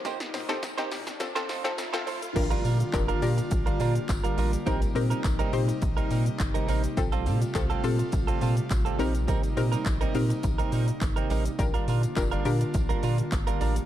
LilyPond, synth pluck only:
\new Staff \with { instrumentName = "Synth pluck" } { \time 4/4 \key bes \major \tempo 4 = 104 <c' ees' g'>8 r16 <c' ees' a'>16 r16 <c' ees' g'>8. <c' f' a'>16 <c' f' a'>16 r16 <c' f' a'>16 r16 <c' f' a'>8 r16 | <d' f' g' bes'>8. r16 <d' f' g' bes'>16 r16 <d' f' g' bes'>4. r4 | <c' ees' g' bes'>16 r16 <c' ees' g' bes'>8. r16 <c' ees' g' c''>4. r4 | <c' f' g' a'>8. r16 <c' f' g' a'>16 r16 <c' f' g' a'>4. r8 <c' ees' g' bes'>8~ |
<c' ees' g' bes'>16 r16 <c' ees' g' bes'>8. r16 <c' ees' g' bes'>4. r4 | <d' f' g' bes'>8. r16 <d' f' g' bes'>16 r16 <d' f' g' bes'>4. r4 | }